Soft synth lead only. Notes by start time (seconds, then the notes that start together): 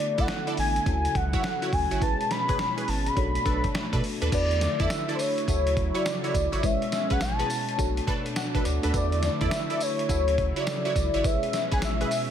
Already playing: D5
0.20 F#5
0.59 G#5
0.88 G#5
1.16 F#5
1.73 G#5
2.02 A5
2.31 B5
2.88 A5
3.07 B5
4.34 D5
4.81 E5
5.15 C5
5.20 C#5
5.97 D5
6.65 E5
7.12 F#5
7.22 A5
8.96 D5
9.44 E5
9.82 C#5
10.59 D5
11.26 E5
11.73 G#5
11.84 E5